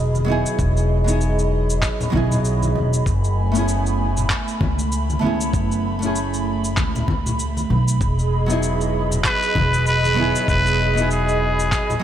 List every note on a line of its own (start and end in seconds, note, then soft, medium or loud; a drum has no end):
0.00 0.41 E1 medium
0.00 0.23 F#3 medium
0.00 0.24 B3 medium
0.00 0.25 D#4 medium
0.00 0.26 E4 medium
0.00 0.26 G#4 medium
0.00 3.02 G#4 medium
0.00 3.02 D#5 medium
0.00 12.03 B5 medium
0.15 high conga medium
0.15 shaker soft
0.24 1.02 F#3 medium
0.24 1.02 B3 medium
0.24 1.03 D#4 medium
0.24 high conga medium
0.30 1.04 E4 medium
0.30 1.05 G#4 medium
0.46 shaker medium
0.59 1.79 E1 loud
0.59 kick loud
0.59 shaker medium
0.77 shaker soft
1.04 2.09 F#3 medium
1.04 2.09 B3 medium
1.04 2.10 D#4 medium
1.04 shaker medium
1.09 2.11 E4 medium
1.09 2.12 G#4 medium
1.21 shaker medium
1.39 shaker soft
1.70 shaker medium
1.82 kick loud
1.82 clap medium
1.82 shaker medium
2.00 low conga medium
2.00 shaker soft
2.10 2.72 B1 loud
2.10 3.03 F#3 medium
2.10 3.04 B3 medium
2.10 3.05 D#4 medium
2.10 kick medium
2.10 high conga loud
2.15 3.06 E4 medium
2.15 3.06 G#4 medium
2.32 low conga medium
2.32 shaker medium
2.45 shaker medium
2.62 high conga medium
2.62 shaker soft
2.75 3.02 E1 medium
2.75 high conga medium
2.93 shaker medium
3.06 4.27 F#1 medium
3.06 7.97 A3 medium
3.06 5.51 G#5 medium
3.06 kick loud
3.06 shaker medium
3.24 shaker soft
3.52 5.18 A3 medium
3.52 5.19 B3 medium
3.52 5.20 C#4 medium
3.52 shaker medium
3.57 5.21 E4 medium
3.57 5.21 G#4 medium
3.68 shaker medium
3.86 shaker soft
4.17 low conga medium
4.17 shaker medium
4.30 kick loud
4.30 clap medium
4.30 shaker medium
4.48 shaker soft
4.61 5.19 C#2 medium
4.61 kick loud
4.61 high conga medium
4.79 shaker medium
4.92 shaker medium
5.10 high conga medium
5.10 shaker soft
5.19 5.50 C#2 medium
5.19 5.96 A3 medium
5.19 5.97 B3 medium
5.19 5.98 C#4 medium
5.19 high conga medium
5.25 5.99 E4 medium
5.25 6.00 G#4 medium
5.41 shaker medium
5.53 6.74 F#1 medium
5.53 kick loud
5.53 shaker medium
5.72 shaker soft
5.99 7.03 A3 medium
5.99 6.05 B3 medium
5.99 7.05 C#4 medium
5.99 shaker medium
6.04 7.06 E4 medium
6.04 7.07 G#4 medium
6.16 shaker medium
6.34 shaker soft
6.64 shaker medium
6.77 7.67 C#2 medium
6.77 kick loud
6.77 clap medium
6.77 high conga medium
6.77 shaker medium
6.95 low conga medium
6.95 shaker soft
7.08 kick medium
7.08 high conga medium
7.26 low conga medium
7.26 shaker medium
7.39 shaker medium
7.57 high conga medium
7.57 shaker soft
7.70 7.97 B1 medium
7.70 high conga medium
7.88 shaker medium
8.00 9.21 E1 medium
8.00 12.03 G#4 medium
8.00 12.03 D#5 medium
8.00 kick loud
8.00 shaker medium
8.19 shaker soft
8.46 10.13 F#3 medium
8.46 10.13 B3 medium
8.46 10.14 D#4 medium
8.46 shaker medium
8.52 10.15 E4 medium
8.52 10.16 G#4 medium
8.63 shaker medium
8.81 shaker soft
9.11 low conga medium
9.11 shaker medium
9.24 9.83 B4 loud
9.24 kick loud
9.24 clap medium
9.24 shaker medium
9.43 shaker soft
9.55 10.31 E1 medium
9.55 kick loud
9.55 high conga medium
9.74 shaker medium
9.86 10.45 B4 loud
9.86 shaker medium
10.04 high conga medium
10.04 shaker soft
10.14 10.91 F#3 medium
10.14 10.92 B3 medium
10.14 10.93 D#4 medium
10.14 high conga medium
10.19 10.94 E4 medium
10.19 10.95 G#4 medium
10.36 shaker medium
10.48 11.69 E1 medium
10.48 11.07 B4 loud
10.48 kick loud
10.48 shaker soft
10.67 shaker soft
10.94 11.98 F#3 medium
10.94 11.99 B3 medium
10.94 12.00 D#4 medium
10.94 shaker medium
10.99 12.01 E4 medium
10.99 12.02 G#4 medium
11.11 12.03 G#4 medium
11.11 shaker soft
11.29 shaker soft
11.59 shaker medium
11.72 kick loud
11.72 clap medium
11.72 shaker soft
11.90 low conga medium
11.90 shaker soft
11.99 12.03 F#3 medium